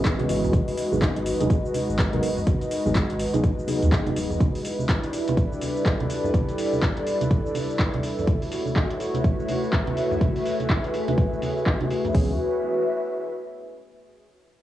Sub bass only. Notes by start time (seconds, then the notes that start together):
0.29 G#1
0.44 C#2
0.53 G#1
0.92 G#1
1.40 D#1
1.89 G#1
2.13 G#1
2.23 D#1
2.47 G#1
2.86 G#1
3.34 D#1
3.83 D#2
4.07 F#1
4.16 D#1
4.31 D#1
12.15 C#2